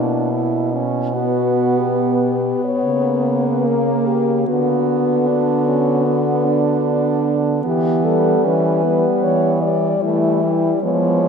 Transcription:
Already playing: B2 A#3 D4 E4
0.33 E4
0.74 C#4
1.14 B3 F#4
1.78 G4
2.64 C#5
2.84 C#3 A#3
3.46 B4
3.67 A#3 A#4
4.06 G4
4.47 D3 B3 F#4
5.27 D4
5.66 C#4
6.05 B3
6.45 D4
7.63 E3 B3 G4
8.04 G3 A4
8.44 E3 C#4 B4
8.84 G3 B3
9.24 E3 C#5
9.62 G3 D5
10.02 E3 A3 E4
10.43 G3
10.83 F3 G#3 B3 C#5
11.24 B3

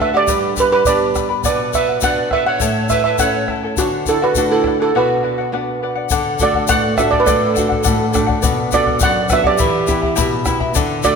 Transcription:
Already playing: D3 A3 D4 F#4
0.00 A4 B4 D5 E5 F#5, bombo rim, bombo low
0.13 G4 D5 F#5
0.28 G2 G4 B4 D5 G5 B5, bombo low, shaker
0.56 G4 B4 D5 G5 B5, bombo low, shaker
0.72 G4 B4 D5 B5
0.85 B3 D4 G4 B4 D5 G5 B5, bombo low, shaker
1.15 B4 D5 G5 B5, bombo rim, bombo low, shaker
1.29 B4 D5 B5
1.44 B2 B4 D5 F#5, bombo low, shaker
1.73 B4 D5 E5 F#5, bombo low, shaker
1.88 D5 F#5
2.01 B3 D4 F#4 B4 D5 F#5, bombo low, shaker
2.31 B4 D5 E5 F#5, bombo rim, bombo low
2.46 C#5 D5 F#5
2.60 A2 E4 A4 C#5 E5 A5, bombo low, shaker
2.89 E4 A4 B4 E5 A5, bombo low, shaker
3.04 E4 A4 B4 E5 A5
3.18 A3 C#4 E4 A4 C#5 E5 F#5 A5, bombo low, shaker
3.48 E4 A4 E5 A5, bombo rim, bombo low
3.63 E4 A4 A5
3.77 D3 D4 F#4 A4 D5 F#5, bombo low, shaker
4.06 E4 A4 D5 F#5, bombo low, shaker
4.21 F#4 B4 D5 F#5
4.35 A3 D4 F#4 A4 D5 F#5, bombo low, shaker
4.50 E4 A4
4.64 A4 D5 F#5, bombo rim, bombo low
4.80 E4 A4 D5 F#5
4.95 B2 F#4 B4 D5 F#5
5.23 B4 D5 F#5
5.38 D5 F#5
5.52 B3 D4 F#4 B4 D5 F#5
5.82 B4 D5 F#5
5.95 D5 F#5
6.10 D3 A4 D5 F#5, bombo low, shaker
6.39 A3 D4 F#4 A4 D5 F#5, bombo low, shaker
6.54 D5 F#5, bombo low
6.68 A2 A4 D5 F#5, bombo low, shaker
6.96 A3 D4 F#4 A4 B4 D5 E5 F#5, bombo rim, bombo low, shaker
7.10 A4 D5 F#5, bombo low
7.19 G4 B4
7.23 A4 D5 F#5, bombo low, shaker
7.28 A2
7.54 A3 A4 D5 F#5, bombo low, shaker
7.58 D4 F#4
7.69 D5 F#5, bombo low
7.83 A2 A4 D5 F#5, bombo low, shaker
8.12 A3 D4 F#4 A4 D5 F#5, bombo rim, bombo low, shaker
8.27 D5 F#5, bombo low
8.42 B2 B4 D5 F#5, bombo low, shaker
8.72 B3 D4 F#4 A4 B4 D5 F#5, bombo low, shaker
8.86 D5 F#5, bombo low
9.00 F#2 B4 D5 F#5, bombo low, shaker
9.29 B3 D4 F#4 B4 D5 F#5, bombo rim, bombo low, shaker
9.33 E5
9.44 G4 D5 F#5, bombo low
9.58 E3 E4 G4 E5 G5 B5, bombo low, shaker
9.87 B3 E4 G4 E5 G5 B5, bombo low, shaker
10.02 E4 E5 B5, bombo low
10.16 B2 E4 G4 E5 G5 B5, bombo low, shaker
10.45 B3 E4 G4 E5 G5 B5, bombo rim, bombo low, shaker
10.60 E4 E5 B5, bombo low
10.75 D3 A4 D5 F#5, bombo low, shaker
11.03 A3 D4 F#4 A4 D5 F#5, bombo low, shaker

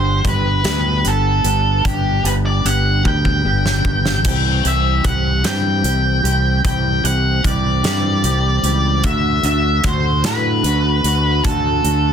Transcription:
Already playing: G1 G3 D4 G4 C5
0.24 G1 G3 B3 D4 G4 B4, kick, closed hi-hat
0.64 D2 G3 B3 D4 G4, snare, closed hi-hat
1.04 G1 G3 B3 D4 G4 A4, closed hi-hat
1.44 G1 G3 B3 D4 G4, closed hi-hat
1.85 G1 G3 B3 D4 G4, kick, closed hi-hat
2.24 G1 G3 B3 D4 G4 B4, closed hi-hat
2.45 D5
2.65 G1 G3 B3 D4 G4 F#5, closed hi-hat
3.04 D2 G3 B3 D4 G4 G5, kick
3.25 kick
3.44 G1 G3 B3 D4 G4
3.66 snare
3.84 G3 B3 D4 G4, kick
4.06 snare
4.25 C2 E3 G3 C4 G4 G5, kick, closed hi-hat, crash
4.64 C2 E3 G3 C4 G4 E5, closed hi-hat
5.04 C2 E3 G3 C4 G4 F#5, kick, closed hi-hat
5.44 G2 E3 G3 C4 G4 G5, snare, closed hi-hat
5.84 C2 E3 G3 C4 G4, closed hi-hat
6.24 C2 E3 G3 C4 G4, closed hi-hat
6.64 C2 E3 G3 C4 G4 G5, kick, closed hi-hat
7.04 C2 E3 G3 C4 G4 F#5, closed hi-hat
7.44 C2 E3 G3 C4 G4 D5, kick, closed hi-hat
7.84 G2 E3 G3 C4 G4, snare, closed hi-hat
8.24 C2 E3 G3 C4 G4, closed hi-hat
8.63 C#2 E3 G3 C4 G4, closed hi-hat
9.04 D2 D3 A3 D4 F#4 E5, kick, closed hi-hat
9.43 D2 D3 A3 D4 F#4 E5, closed hi-hat
9.84 D2 D3 A3 D4 F#4 C5, kick, closed hi-hat
10.24 A2 D3 A3 D4 F#4 B4, snare, closed hi-hat
10.64 D2 D3 A3 D4 F#4, closed hi-hat
11.04 D2 D3 A3 D4 F#4, closed hi-hat
11.44 D2 D3 A3 D4 F#4 A4, kick, closed hi-hat
11.84 D2 D3 A3 D4 F#4, closed hi-hat

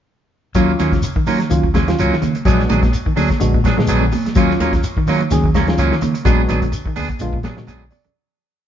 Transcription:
0.55 D#2 F#3 A#3 C#4 F4, kick, closed hi-hat, low conga, shekere
0.79 D#2 D#3 F#3 A#3 C#4 F4, snare, closed hi-hat, high conga, shekere
0.92 C#3, muted clean electric guitar stroke, kick, snare, closed hi-hat
1.02 muted clean electric guitar stroke, closed hi-hat, shekere
1.16 D#3, muted clean electric guitar stroke, kick
1.26 D#3 F#3 A#3 C#4 F4, open hi-hat, high conga, low conga, shekere
1.40 muted clean electric guitar stroke, snare, closed hi-hat
1.50 C#2 D#3 F#3 C#4 F4, closed hi-hat, shekere
1.63 D#2, muted clean electric guitar stroke, kick
1.74 C#3 F#3 A#3 C#4 F4, kick, snare, closed hi-hat, high conga, shekere
1.87 D#3 F#3 C#4 F4, muted clean electric guitar stroke, snare, closed hi-hat
1.99 C#2 F#3 A#3 C#4 F4, closed hi-hat, shekere
2.12 D#3, snare
2.22 C#3 D#3, muted clean electric guitar stroke, closed hi-hat, high conga, low conga, shekere
2.35 muted clean electric guitar stroke, closed hi-hat
2.45 A#1 F#3 G#3 B3 D4 F#4 G#4, kick, closed hi-hat, shekere
2.60 snare
2.69 A#1 D#3 F#3 B3 D4 G#4, closed hi-hat, high conga, shekere
2.82 muted clean electric guitar stroke, kick, snare, closed hi-hat, high conga
2.92 muted clean electric guitar stroke, closed hi-hat, shekere
3.06 D#3, muted clean electric guitar stroke, kick
3.16 D2 D3 F#3 D4 G#4, open hi-hat, high conga, low conga, shekere
3.30 muted clean electric guitar stroke, kick, snare, closed hi-hat
3.40 A#1 D3 G#3 B3 D4 F#4, closed hi-hat, shekere
3.54 A#2, muted clean electric guitar stroke, kick
3.64 B2 F#3 B3 D4 G#4, kick, snare, closed hi-hat, high conga, shekere
3.77 A#2 D3 G#3 B3 D4 G#4, muted clean electric guitar stroke, snare
3.87 A#1 F#3 B3 D4 G#4, closed hi-hat, shekere
4.01 D3
4.12 B2, muted clean electric guitar stroke, open hi-hat, high conga, low conga, shekere
4.26 muted clean electric guitar stroke, muted fingered electric bass stroke, snare, closed hi-hat
4.35 D#2 F#3 A#3 C#4 F4, kick, closed hi-hat, low conga, shekere
4.51 snare
4.59 D#2 D#3 F#3 A#3 C#4 F4, closed hi-hat, high conga, shekere
4.73 muted clean electric guitar stroke, kick, snare, closed hi-hat
4.83 muted clean electric guitar stroke, closed hi-hat, shekere
4.97 D#3, muted clean electric guitar stroke, kick
5.06 D#3 F#3 A#3 C#4 F4, open hi-hat, high conga, low conga, shekere
5.20 muted clean electric guitar stroke, closed hi-hat
5.30 C#2 D#3 F#3 C#4 G#4, snare, closed hi-hat, high conga, shekere
5.44 D#2, muted clean electric guitar stroke, kick
5.54 C#3 F#3 A#3 C#4 F4, kick, snare, closed hi-hat, high conga, shekere
5.68 D#3 F#3 C#4 F4, muted clean electric guitar stroke, snare, closed hi-hat
5.78 C#2 F#3 A#3 C#4 F4, closed hi-hat, shekere
5.92 D#3, snare
6.01 C#3 D#3, muted clean electric guitar stroke, closed hi-hat, high conga, low conga, shekere
6.14 muted clean electric guitar stroke, closed hi-hat
6.25 A#1 F#3 G#3 B3 D4 F#4 G#4, kick, closed hi-hat, low conga, shekere
6.48 A#1 D#3 F#3 B3 D4 G#4, closed hi-hat, high conga, shekere
6.61 D3, muted clean electric guitar stroke, kick, closed hi-hat
6.72 muted clean electric guitar stroke, closed hi-hat, shekere
6.85 D#3, muted clean electric guitar stroke, kick
6.96 D2 B3 D4 G#4, open hi-hat, high conga, low conga, shekere
7.09 muted clean electric guitar stroke, kick, closed hi-hat
7.19 A#1 D3 G#3 B3 D4 F4, closed hi-hat, shekere
7.33 A#2, muted clean electric guitar stroke, kick
7.43 B2 F#3 B3 D4 G#4, kick, snare, closed hi-hat, high conga, low conga, shekere
7.57 A#2 D3 G#3 B3 D4 F#4, muted clean electric guitar stroke, snare
7.67 A#1 F#3 B3 D4 G#4 F#5, closed hi-hat, high conga, shekere
7.81 D3
7.90 B2 D5, muted clean electric guitar stroke, open hi-hat, low conga, shekere
8.04 muted clean electric guitar stroke, closed hi-hat, low conga

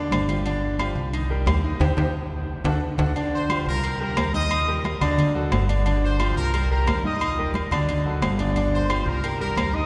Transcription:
Already playing: D3 D4 D5
0.11 G1, high conga, low timbale, low agogo
0.28 F3 F4 G4, high conga, low agogo
0.45 D3 D4 D5, high conga, low agogo
0.62 high conga
0.79 F3 F4 G4, high conga, low timbale, low agogo
0.95 C2
1.13 D#3 D#4 D#5, high conga, low agogo
1.30 G3 G4 A#4, high conga
1.46 D#2, high conga, low timbale, low agogo
1.64 D#3 D#4 D#5
1.80 D#2 C4 D#4 G4, low conga, high timbale
1.97 D#2 C4 D#4 G4, low conga, high timbale
2.64 D2 D4 F#4 A4, low conga, high timbale
2.98 D2 D4 F#4 A4, low conga, high timbale
3.15 D3 D4 D5, high conga, low agogo
3.33 C5 C6, high conga
3.49 F3 F4 G4, high conga, low timbale, low agogo
3.66 C2 A#4 A#5
3.83 G3 G4 A#4, high conga, low agogo
4.00 G3 G4 A#4 A#5, high conga
4.16 D#2, high conga, low timbale, low agogo
4.34 D#3 D#4 D#5 D#6, high conga
4.51 high conga, low agogo
4.67 G3 G4 A#4, high conga
4.84 high conga, low timbale, low agogo
5.01 D2 D3 D4 D5, low conga, low agogo
5.18 high conga, low conga, low agogo
5.35 F#3 F#4 A4, high conga
5.51 G1, high conga, low timbale, low agogo
5.69 D3 D4 D5, high conga, low agogo
5.85 D3 D4 D5, high conga, low agogo
6.03 C5 C6, high conga
6.19 F3 F4 G4, high conga, low timbale, low agogo
6.36 C2 A#4 A#5
6.53 G3 G4 A#4, high conga, low agogo
6.70 G3 G4 A#4 A#5, high conga
6.87 D#2, high conga, low timbale, low agogo
7.04 D#3 D#4 D#5 D#6, high conga
7.21 high conga, low agogo
7.37 G3 G4 A#4, high conga
7.54 high conga, low timbale, low agogo
7.71 D2 D3 D4 D5, low conga, low agogo
7.88 high conga, low conga, low agogo
8.05 F#3 F#4 A4, high conga
8.22 G1, high conga, low timbale, low agogo
8.39 D3 D4 D5, low agogo
8.55 D3 D4 D5, high conga, low agogo
8.72 C5 C6, high conga
8.89 F3 F4 G4, high conga, low timbale, low agogo
9.06 C2 A#4 A#5
9.23 G3 G4 A#4, high conga, low agogo
9.40 G3 G4 A#4 A#5, high conga
9.56 D#2, high conga, low timbale, low agogo
9.73 D#3 D#4 D#5 D#6, high conga

